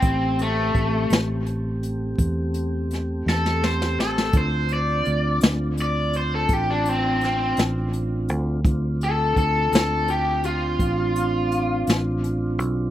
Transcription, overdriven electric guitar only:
X:1
M:12/8
L:1/16
Q:3/8=56
K:Ddor
V:1 name="Overdriven electric guitar"
C2 A,4 z12 A2 c2 A2 | c2 d4 z2 d2 c A G D C2 C2 z6 | z2 A2 A2 A2 G2 F8 z6 |]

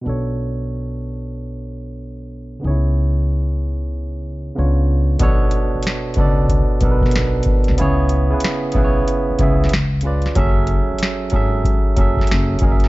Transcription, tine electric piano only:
X:1
M:4/4
L:1/16
Q:"Swing 16ths" 1/4=93
K:Bdor
V:1 name="Tine electric piano"
[B,,B,DAc]16 | [C,B,^DEGc]12 [C,B,=D^Ec]4 | [B,,B,DAc]4- [B,,B,DAc] z [B,,B,DAd]3 z [B,,B,DA^AB]4- [B,,B,D=A^AB] z | [C,B,EGc]2 z [C,B,EGB]2 z [C,B,EGBc]3 z [C,B,EGe]2 z2 [C,C^EBd]2 |
[F,CGAe]4- [F,CGAe] z [F,CGAe]3 z [F,CGAe]4 [F,CG^A^de]2 |]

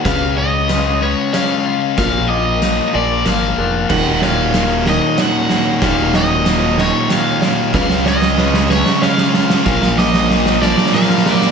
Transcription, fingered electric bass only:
X:1
M:3/4
L:1/8
Q:1/4=94
K:Ebm
V:1 name="Fingered electric bass" clef=bass
D,,4 z2 | B,,,3 B,,, A,,, F,,, | E,,,4 z2 | E,,,4 z2 |
D,,4 z2 | B,,,4 z2 |]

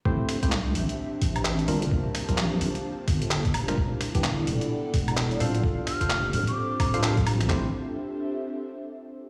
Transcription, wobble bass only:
X:1
M:4/4
L:1/16
Q:"Swing 16ths" 1/4=129
K:Aphr
V:1 name="Wobble bass" clef=bass
A,,, z2 C,,3 A,,, z3 A,,,4 G,,,2 | G,,, z2 B,,,3 G,,, z3 G,,,4 F,,,2 | E,,, z2 G,,,3 E,,, z3 E,,,4 D,,,2 | D,,, z2 F,,,3 D,,, z3 D,,,4- D,,, D,, |
A,,,2 z12 z2 |]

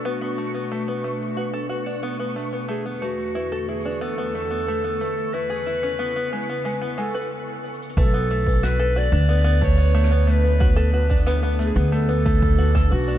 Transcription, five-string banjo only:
X:1
M:4/4
L:1/16
Q:1/4=91
K:Bdor
V:1 name="Five-string banjo"
B, B, A, B, A, B, A,2 F A F D B, B, A, B, | A, B, A,2 E A E D B, B, A, B, A, B, A,2 | E G E C B, B, G, B, G, B, G, B z4 | A, B, A,2 F A F D B, B, A, B, A, B, A,2 |
F A F D B, B, A, B, A, B, A,2 F A F D |]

